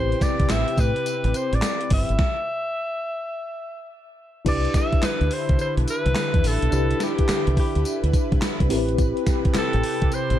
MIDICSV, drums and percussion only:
0, 0, Header, 1, 2, 480
1, 0, Start_track
1, 0, Key_signature, 0, "major"
1, 0, Tempo, 566038
1, 1861, Time_signature, 4, 2, 24, 8
1, 8812, End_track
2, 0, Start_track
2, 0, Title_t, "Drums"
2, 103, Note_on_c, 9, 42, 55
2, 180, Note_on_c, 9, 36, 94
2, 183, Note_on_c, 9, 38, 72
2, 183, Note_on_c, 9, 54, 75
2, 184, Note_off_c, 9, 42, 0
2, 184, Note_on_c, 9, 42, 66
2, 265, Note_off_c, 9, 36, 0
2, 268, Note_off_c, 9, 38, 0
2, 268, Note_off_c, 9, 54, 0
2, 269, Note_off_c, 9, 42, 0
2, 336, Note_on_c, 9, 36, 96
2, 336, Note_on_c, 9, 42, 55
2, 419, Note_on_c, 9, 39, 98
2, 421, Note_off_c, 9, 36, 0
2, 421, Note_off_c, 9, 42, 0
2, 421, Note_on_c, 9, 38, 108
2, 421, Note_on_c, 9, 42, 76
2, 422, Note_on_c, 9, 54, 86
2, 504, Note_off_c, 9, 39, 0
2, 506, Note_off_c, 9, 38, 0
2, 506, Note_off_c, 9, 42, 0
2, 506, Note_off_c, 9, 54, 0
2, 575, Note_on_c, 9, 42, 49
2, 658, Note_on_c, 9, 36, 99
2, 660, Note_off_c, 9, 42, 0
2, 660, Note_on_c, 9, 42, 79
2, 660, Note_on_c, 9, 54, 75
2, 743, Note_off_c, 9, 36, 0
2, 745, Note_off_c, 9, 42, 0
2, 745, Note_off_c, 9, 54, 0
2, 814, Note_on_c, 9, 42, 47
2, 899, Note_off_c, 9, 42, 0
2, 899, Note_on_c, 9, 42, 71
2, 899, Note_on_c, 9, 54, 80
2, 984, Note_off_c, 9, 42, 0
2, 984, Note_off_c, 9, 54, 0
2, 1052, Note_on_c, 9, 42, 55
2, 1137, Note_off_c, 9, 42, 0
2, 1138, Note_on_c, 9, 42, 77
2, 1139, Note_on_c, 9, 54, 66
2, 1223, Note_off_c, 9, 42, 0
2, 1224, Note_off_c, 9, 54, 0
2, 1295, Note_on_c, 9, 42, 57
2, 1374, Note_on_c, 9, 39, 90
2, 1375, Note_off_c, 9, 42, 0
2, 1375, Note_on_c, 9, 42, 66
2, 1376, Note_on_c, 9, 38, 112
2, 1376, Note_on_c, 9, 54, 94
2, 1459, Note_off_c, 9, 39, 0
2, 1459, Note_off_c, 9, 42, 0
2, 1461, Note_off_c, 9, 38, 0
2, 1461, Note_off_c, 9, 54, 0
2, 1532, Note_on_c, 9, 42, 56
2, 1615, Note_on_c, 9, 46, 76
2, 1617, Note_off_c, 9, 42, 0
2, 1618, Note_on_c, 9, 36, 89
2, 1700, Note_off_c, 9, 46, 0
2, 1703, Note_off_c, 9, 36, 0
2, 1773, Note_on_c, 9, 42, 58
2, 1855, Note_on_c, 9, 38, 89
2, 1857, Note_off_c, 9, 42, 0
2, 1858, Note_on_c, 9, 36, 111
2, 1940, Note_off_c, 9, 38, 0
2, 1943, Note_off_c, 9, 36, 0
2, 3782, Note_on_c, 9, 36, 108
2, 3783, Note_on_c, 9, 42, 78
2, 3783, Note_on_c, 9, 49, 106
2, 3783, Note_on_c, 9, 54, 54
2, 3867, Note_off_c, 9, 36, 0
2, 3867, Note_off_c, 9, 54, 0
2, 3868, Note_off_c, 9, 42, 0
2, 3868, Note_off_c, 9, 49, 0
2, 3942, Note_on_c, 9, 42, 59
2, 4021, Note_on_c, 9, 36, 97
2, 4021, Note_on_c, 9, 38, 73
2, 4021, Note_on_c, 9, 54, 74
2, 4022, Note_off_c, 9, 42, 0
2, 4022, Note_on_c, 9, 42, 71
2, 4105, Note_off_c, 9, 54, 0
2, 4106, Note_off_c, 9, 36, 0
2, 4106, Note_off_c, 9, 38, 0
2, 4107, Note_off_c, 9, 42, 0
2, 4176, Note_on_c, 9, 42, 58
2, 4178, Note_on_c, 9, 36, 93
2, 4261, Note_off_c, 9, 42, 0
2, 4261, Note_on_c, 9, 39, 95
2, 4263, Note_off_c, 9, 36, 0
2, 4263, Note_on_c, 9, 38, 123
2, 4263, Note_on_c, 9, 42, 76
2, 4263, Note_on_c, 9, 54, 96
2, 4346, Note_off_c, 9, 39, 0
2, 4348, Note_off_c, 9, 38, 0
2, 4348, Note_off_c, 9, 42, 0
2, 4348, Note_off_c, 9, 54, 0
2, 4417, Note_on_c, 9, 42, 50
2, 4501, Note_on_c, 9, 46, 78
2, 4502, Note_off_c, 9, 42, 0
2, 4586, Note_off_c, 9, 46, 0
2, 4656, Note_on_c, 9, 42, 50
2, 4659, Note_on_c, 9, 36, 92
2, 4739, Note_off_c, 9, 42, 0
2, 4739, Note_on_c, 9, 42, 69
2, 4739, Note_on_c, 9, 54, 77
2, 4744, Note_off_c, 9, 36, 0
2, 4824, Note_off_c, 9, 42, 0
2, 4824, Note_off_c, 9, 54, 0
2, 4897, Note_on_c, 9, 42, 55
2, 4981, Note_off_c, 9, 42, 0
2, 4983, Note_on_c, 9, 42, 74
2, 4983, Note_on_c, 9, 54, 66
2, 5068, Note_off_c, 9, 42, 0
2, 5068, Note_off_c, 9, 54, 0
2, 5137, Note_on_c, 9, 42, 58
2, 5218, Note_on_c, 9, 39, 90
2, 5219, Note_off_c, 9, 42, 0
2, 5219, Note_on_c, 9, 42, 70
2, 5220, Note_on_c, 9, 38, 108
2, 5220, Note_on_c, 9, 54, 94
2, 5303, Note_off_c, 9, 39, 0
2, 5303, Note_off_c, 9, 42, 0
2, 5304, Note_off_c, 9, 38, 0
2, 5305, Note_off_c, 9, 54, 0
2, 5376, Note_on_c, 9, 42, 55
2, 5377, Note_on_c, 9, 36, 89
2, 5461, Note_off_c, 9, 42, 0
2, 5462, Note_off_c, 9, 36, 0
2, 5462, Note_on_c, 9, 46, 74
2, 5463, Note_on_c, 9, 54, 61
2, 5546, Note_off_c, 9, 46, 0
2, 5547, Note_off_c, 9, 54, 0
2, 5617, Note_on_c, 9, 42, 60
2, 5699, Note_on_c, 9, 54, 62
2, 5700, Note_off_c, 9, 42, 0
2, 5700, Note_on_c, 9, 42, 72
2, 5784, Note_off_c, 9, 42, 0
2, 5784, Note_off_c, 9, 54, 0
2, 5856, Note_on_c, 9, 42, 55
2, 5938, Note_on_c, 9, 38, 73
2, 5938, Note_on_c, 9, 54, 78
2, 5939, Note_off_c, 9, 42, 0
2, 5939, Note_on_c, 9, 42, 68
2, 6023, Note_off_c, 9, 38, 0
2, 6023, Note_off_c, 9, 54, 0
2, 6024, Note_off_c, 9, 42, 0
2, 6093, Note_on_c, 9, 42, 59
2, 6096, Note_on_c, 9, 36, 91
2, 6177, Note_off_c, 9, 42, 0
2, 6178, Note_on_c, 9, 39, 88
2, 6180, Note_on_c, 9, 38, 121
2, 6180, Note_on_c, 9, 42, 73
2, 6181, Note_off_c, 9, 36, 0
2, 6181, Note_on_c, 9, 54, 98
2, 6263, Note_off_c, 9, 39, 0
2, 6265, Note_off_c, 9, 38, 0
2, 6265, Note_off_c, 9, 42, 0
2, 6265, Note_off_c, 9, 54, 0
2, 6335, Note_on_c, 9, 42, 55
2, 6419, Note_on_c, 9, 36, 93
2, 6420, Note_off_c, 9, 42, 0
2, 6421, Note_on_c, 9, 46, 78
2, 6504, Note_off_c, 9, 36, 0
2, 6506, Note_off_c, 9, 46, 0
2, 6575, Note_on_c, 9, 42, 48
2, 6659, Note_off_c, 9, 42, 0
2, 6659, Note_on_c, 9, 42, 73
2, 6659, Note_on_c, 9, 54, 76
2, 6744, Note_off_c, 9, 42, 0
2, 6744, Note_off_c, 9, 54, 0
2, 6815, Note_on_c, 9, 42, 53
2, 6898, Note_on_c, 9, 36, 102
2, 6900, Note_off_c, 9, 42, 0
2, 6900, Note_on_c, 9, 42, 76
2, 6901, Note_on_c, 9, 54, 64
2, 6983, Note_off_c, 9, 36, 0
2, 6985, Note_off_c, 9, 42, 0
2, 6986, Note_off_c, 9, 54, 0
2, 7056, Note_on_c, 9, 36, 96
2, 7057, Note_on_c, 9, 42, 55
2, 7138, Note_off_c, 9, 42, 0
2, 7138, Note_on_c, 9, 39, 94
2, 7138, Note_on_c, 9, 42, 73
2, 7140, Note_on_c, 9, 38, 111
2, 7140, Note_on_c, 9, 54, 91
2, 7141, Note_off_c, 9, 36, 0
2, 7222, Note_off_c, 9, 39, 0
2, 7223, Note_off_c, 9, 42, 0
2, 7224, Note_off_c, 9, 38, 0
2, 7225, Note_off_c, 9, 54, 0
2, 7295, Note_on_c, 9, 36, 93
2, 7297, Note_on_c, 9, 42, 58
2, 7379, Note_on_c, 9, 46, 76
2, 7380, Note_off_c, 9, 36, 0
2, 7380, Note_on_c, 9, 54, 68
2, 7382, Note_off_c, 9, 42, 0
2, 7464, Note_off_c, 9, 46, 0
2, 7465, Note_off_c, 9, 54, 0
2, 7535, Note_on_c, 9, 42, 60
2, 7618, Note_on_c, 9, 54, 62
2, 7619, Note_off_c, 9, 42, 0
2, 7619, Note_on_c, 9, 36, 118
2, 7619, Note_on_c, 9, 42, 69
2, 7703, Note_off_c, 9, 54, 0
2, 7704, Note_off_c, 9, 36, 0
2, 7704, Note_off_c, 9, 42, 0
2, 7775, Note_on_c, 9, 42, 56
2, 7856, Note_on_c, 9, 54, 79
2, 7857, Note_on_c, 9, 38, 71
2, 7858, Note_off_c, 9, 42, 0
2, 7858, Note_on_c, 9, 36, 99
2, 7858, Note_on_c, 9, 42, 69
2, 7941, Note_off_c, 9, 38, 0
2, 7941, Note_off_c, 9, 54, 0
2, 7942, Note_off_c, 9, 42, 0
2, 7943, Note_off_c, 9, 36, 0
2, 8013, Note_on_c, 9, 42, 54
2, 8015, Note_on_c, 9, 36, 89
2, 8093, Note_on_c, 9, 39, 104
2, 8095, Note_off_c, 9, 42, 0
2, 8095, Note_on_c, 9, 38, 127
2, 8095, Note_on_c, 9, 42, 80
2, 8095, Note_on_c, 9, 54, 92
2, 8100, Note_off_c, 9, 36, 0
2, 8178, Note_off_c, 9, 39, 0
2, 8180, Note_off_c, 9, 38, 0
2, 8180, Note_off_c, 9, 42, 0
2, 8180, Note_off_c, 9, 54, 0
2, 8254, Note_on_c, 9, 42, 56
2, 8338, Note_off_c, 9, 42, 0
2, 8340, Note_on_c, 9, 46, 83
2, 8425, Note_off_c, 9, 46, 0
2, 8494, Note_on_c, 9, 42, 51
2, 8497, Note_on_c, 9, 36, 89
2, 8579, Note_off_c, 9, 42, 0
2, 8579, Note_on_c, 9, 42, 77
2, 8579, Note_on_c, 9, 54, 77
2, 8582, Note_off_c, 9, 36, 0
2, 8664, Note_off_c, 9, 42, 0
2, 8664, Note_off_c, 9, 54, 0
2, 8737, Note_on_c, 9, 42, 57
2, 8812, Note_off_c, 9, 42, 0
2, 8812, End_track
0, 0, End_of_file